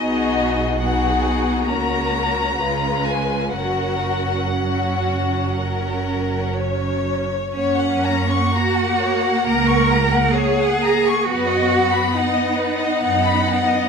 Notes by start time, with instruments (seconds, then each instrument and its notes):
Already playing: double bass section B1, cello section B2, viola section B3 D#4, violin section F#4 G#4 D#5
0.81 viola section B3 D#4, violin section F#4 G#4 F#5
1.67 double bass section C#2, cello section C#3, viola section A#3 C#4, violin section F#4 A#4 A#5
2.60 double bass section C#2, cello section C#3, viola section G#3 C#4, violin section F4 B4
3.06 violin section G#5
3.56 double bass section F#1, cello section F#2, viola section F#3 C#4, violin section F#4 A#4 F#5
4.59 violin section F#4
5.58 violin section A#4
6.55 violin section C#5
7.54 double bass section F#2, viola section A#3, cello section C#4, violin section C#5 F#5
7.77 violin section F#5
8.04 violin section A#5
8.30 violin section C#6
8.55 cello section F#4, violin section A#5
8.79 violin section F#5
9.02 violin section C#5
9.23 violin section F#5
9.47 double bass section C#2, cello section A#4, violin section A#5
9.68 violin section C#6
9.90 violin section A#5
10.14 violin section F#5
10.37 cello section G#4, violin section C#5
10.60 violin section F#5
10.83 violin section A#5
11.06 violin section C#6
11.28 double bass section F#2, viola section B3, cello section F#4, violin section B4 F#5
11.50 violin section D#5
11.71 violin section F#5
11.92 violin section B5
12.15 cello section D#4, violin section F#5
12.37 violin section D#5
12.58 violin section B4
12.79 violin section D#5
13.02 double bass section F#2, violin section F#5
13.23 violin section B5
13.46 violin section F#5
13.67 violin section D#5